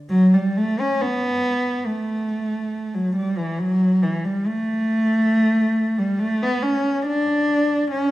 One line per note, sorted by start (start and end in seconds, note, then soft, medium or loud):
0.10 0.31 F#3 loud
0.33 0.56 G3 medium
0.57 0.79 A3 medium
0.80 1.01 C#4 medium
1.02 1.85 B3 medium
1.86 2.93 A3 medium
2.94 3.15 F#3 medium
3.16 3.36 G3 medium
3.37 3.58 E3 medium
3.59 4.02 F#3 medium
4.03 4.24 E3 medium
4.25 4.46 G3 medium
4.46 5.99 A3 medium
5.98 6.19 G3 medium
6.19 6.41 A3 medium
6.43 6.63 B3 medium
6.62 7.05 C#4 medium
7.06 7.89 D4 medium
7.91 8.11 C#4 medium